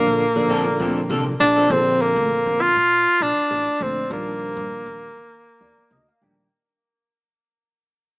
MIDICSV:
0, 0, Header, 1, 7, 480
1, 0, Start_track
1, 0, Key_signature, -2, "major"
1, 0, Tempo, 601202
1, 1361, Time_signature, 4, 2, 24, 8
1, 6535, End_track
2, 0, Start_track
2, 0, Title_t, "Clean electric guitar"
2, 0, Program_c, 0, 27
2, 396, Note_on_c, 0, 53, 80
2, 398, Note_on_c, 0, 60, 82
2, 401, Note_on_c, 0, 62, 87
2, 403, Note_on_c, 0, 69, 83
2, 519, Note_off_c, 0, 69, 0
2, 523, Note_off_c, 0, 62, 0
2, 525, Note_off_c, 0, 60, 0
2, 529, Note_off_c, 0, 53, 0
2, 640, Note_on_c, 0, 53, 64
2, 645, Note_on_c, 0, 60, 65
2, 648, Note_on_c, 0, 62, 60
2, 650, Note_on_c, 0, 69, 62
2, 793, Note_off_c, 0, 53, 0
2, 796, Note_off_c, 0, 60, 0
2, 797, Note_off_c, 0, 62, 0
2, 798, Note_off_c, 0, 69, 0
2, 874, Note_on_c, 0, 53, 68
2, 878, Note_on_c, 0, 60, 60
2, 882, Note_on_c, 0, 62, 66
2, 884, Note_on_c, 0, 69, 71
2, 1002, Note_off_c, 0, 69, 0
2, 1003, Note_off_c, 0, 62, 0
2, 1005, Note_off_c, 0, 60, 0
2, 1008, Note_off_c, 0, 53, 0
2, 1247, Note_on_c, 0, 69, 55
2, 1253, Note_on_c, 0, 62, 59
2, 1257, Note_on_c, 0, 60, 49
2, 1358, Note_off_c, 0, 69, 0
2, 1362, Note_off_c, 0, 62, 0
2, 1363, Note_off_c, 0, 60, 0
2, 6535, End_track
3, 0, Start_track
3, 0, Title_t, "Tenor saxophone"
3, 0, Program_c, 1, 66
3, 0, Note_on_c, 1, 58, 82
3, 879, Note_off_c, 1, 58, 0
3, 1119, Note_on_c, 1, 62, 77
3, 1370, Note_on_c, 1, 60, 87
3, 1382, Note_off_c, 1, 62, 0
3, 1609, Note_on_c, 1, 58, 77
3, 1621, Note_off_c, 1, 60, 0
3, 2084, Note_on_c, 1, 65, 91
3, 2096, Note_off_c, 1, 58, 0
3, 2571, Note_on_c, 1, 62, 91
3, 2583, Note_off_c, 1, 65, 0
3, 3053, Note_on_c, 1, 60, 75
3, 3065, Note_off_c, 1, 62, 0
3, 3287, Note_off_c, 1, 60, 0
3, 3297, Note_on_c, 1, 58, 68
3, 4938, Note_off_c, 1, 58, 0
3, 6535, End_track
4, 0, Start_track
4, 0, Title_t, "Tine electric piano"
4, 0, Program_c, 2, 4
4, 0, Note_on_c, 2, 46, 65
4, 0, Note_on_c, 2, 50, 64
4, 0, Note_on_c, 2, 53, 66
4, 0, Note_on_c, 2, 62, 79
4, 0, Note_on_c, 2, 69, 68
4, 187, Note_off_c, 2, 50, 0
4, 188, Note_off_c, 2, 46, 0
4, 188, Note_off_c, 2, 53, 0
4, 190, Note_off_c, 2, 69, 0
4, 191, Note_off_c, 2, 62, 0
4, 279, Note_on_c, 2, 46, 68
4, 284, Note_on_c, 2, 50, 64
4, 285, Note_on_c, 2, 53, 66
4, 287, Note_on_c, 2, 69, 70
4, 289, Note_on_c, 2, 62, 83
4, 1054, Note_off_c, 2, 46, 0
4, 1056, Note_off_c, 2, 50, 0
4, 1057, Note_off_c, 2, 53, 0
4, 1058, Note_off_c, 2, 69, 0
4, 1059, Note_off_c, 2, 62, 0
4, 1357, Note_on_c, 2, 46, 65
4, 1360, Note_on_c, 2, 53, 56
4, 1361, Note_on_c, 2, 50, 55
4, 1364, Note_on_c, 2, 69, 57
4, 1365, Note_on_c, 2, 60, 68
4, 2136, Note_off_c, 2, 46, 0
4, 2138, Note_off_c, 2, 50, 0
4, 2138, Note_off_c, 2, 53, 0
4, 2140, Note_off_c, 2, 69, 0
4, 2141, Note_off_c, 2, 60, 0
4, 3028, Note_on_c, 2, 50, 53
4, 3029, Note_on_c, 2, 46, 58
4, 3034, Note_on_c, 2, 62, 62
4, 3035, Note_on_c, 2, 53, 53
4, 3038, Note_on_c, 2, 57, 49
4, 3232, Note_off_c, 2, 46, 0
4, 3232, Note_off_c, 2, 50, 0
4, 3234, Note_off_c, 2, 62, 0
4, 3235, Note_off_c, 2, 53, 0
4, 3236, Note_off_c, 2, 57, 0
4, 3270, Note_on_c, 2, 46, 59
4, 3271, Note_on_c, 2, 51, 53
4, 3271, Note_on_c, 2, 53, 54
4, 3275, Note_on_c, 2, 55, 58
4, 3276, Note_on_c, 2, 62, 71
4, 4054, Note_off_c, 2, 46, 0
4, 4054, Note_off_c, 2, 51, 0
4, 4054, Note_off_c, 2, 53, 0
4, 4056, Note_off_c, 2, 55, 0
4, 4057, Note_off_c, 2, 62, 0
4, 4481, Note_on_c, 2, 74, 51
4, 4705, Note_off_c, 2, 74, 0
4, 4728, Note_on_c, 2, 75, 58
4, 4846, Note_off_c, 2, 75, 0
4, 4858, Note_on_c, 2, 77, 51
4, 4957, Note_off_c, 2, 77, 0
4, 4965, Note_on_c, 2, 46, 59
4, 4968, Note_on_c, 2, 51, 52
4, 4969, Note_on_c, 2, 79, 46
4, 4971, Note_on_c, 2, 53, 51
4, 4971, Note_on_c, 2, 55, 53
4, 4976, Note_on_c, 2, 62, 60
4, 5161, Note_off_c, 2, 46, 0
4, 5162, Note_off_c, 2, 51, 0
4, 5164, Note_off_c, 2, 53, 0
4, 5164, Note_off_c, 2, 55, 0
4, 5167, Note_off_c, 2, 62, 0
4, 5189, Note_off_c, 2, 79, 0
4, 6535, End_track
5, 0, Start_track
5, 0, Title_t, "Upright bass"
5, 0, Program_c, 3, 32
5, 49, Note_on_c, 3, 34, 73
5, 290, Note_off_c, 3, 34, 0
5, 290, Note_on_c, 3, 33, 84
5, 393, Note_off_c, 3, 33, 0
5, 635, Note_on_c, 3, 38, 85
5, 759, Note_off_c, 3, 38, 0
5, 876, Note_on_c, 3, 36, 78
5, 1094, Note_off_c, 3, 36, 0
5, 1116, Note_on_c, 3, 34, 83
5, 1334, Note_off_c, 3, 34, 0
5, 1356, Note_on_c, 3, 34, 101
5, 1703, Note_off_c, 3, 34, 0
5, 1726, Note_on_c, 3, 38, 83
5, 1830, Note_off_c, 3, 38, 0
5, 1967, Note_on_c, 3, 34, 78
5, 2192, Note_off_c, 3, 34, 0
5, 2207, Note_on_c, 3, 46, 73
5, 2432, Note_off_c, 3, 46, 0
5, 2559, Note_on_c, 3, 34, 72
5, 2681, Note_off_c, 3, 34, 0
5, 2799, Note_on_c, 3, 33, 75
5, 2921, Note_off_c, 3, 33, 0
5, 3039, Note_on_c, 3, 38, 74
5, 3161, Note_off_c, 3, 38, 0
5, 3279, Note_on_c, 3, 39, 85
5, 3624, Note_off_c, 3, 39, 0
5, 3646, Note_on_c, 3, 43, 83
5, 3750, Note_off_c, 3, 43, 0
5, 3883, Note_on_c, 3, 39, 79
5, 4110, Note_off_c, 3, 39, 0
5, 4125, Note_on_c, 3, 51, 67
5, 4352, Note_off_c, 3, 51, 0
5, 4477, Note_on_c, 3, 39, 68
5, 4600, Note_off_c, 3, 39, 0
5, 4717, Note_on_c, 3, 38, 69
5, 4840, Note_off_c, 3, 38, 0
5, 4963, Note_on_c, 3, 38, 66
5, 5084, Note_off_c, 3, 38, 0
5, 6535, End_track
6, 0, Start_track
6, 0, Title_t, "Muted clean electric guitar strokes"
6, 155, Note_on_c, 9, 29, 35
6, 235, Note_off_c, 9, 29, 0
6, 289, Note_on_c, 9, 29, 40
6, 369, Note_off_c, 9, 29, 0
6, 528, Note_on_c, 9, 29, 43
6, 608, Note_off_c, 9, 29, 0
6, 1011, Note_on_c, 9, 29, 42
6, 1091, Note_off_c, 9, 29, 0
6, 1121, Note_on_c, 9, 29, 36
6, 1200, Note_off_c, 9, 29, 0
6, 6535, End_track
7, 0, Start_track
7, 0, Title_t, "Muted upright bass strokes"
7, 530, Note_on_c, 9, 29, 32
7, 610, Note_off_c, 9, 29, 0
7, 1839, Note_on_c, 9, 29, 33
7, 1919, Note_off_c, 9, 29, 0
7, 2692, Note_on_c, 9, 29, 31
7, 2772, Note_off_c, 9, 29, 0
7, 3760, Note_on_c, 9, 29, 30
7, 3840, Note_off_c, 9, 29, 0
7, 4612, Note_on_c, 9, 29, 28
7, 4692, Note_off_c, 9, 29, 0
7, 6535, End_track
0, 0, End_of_file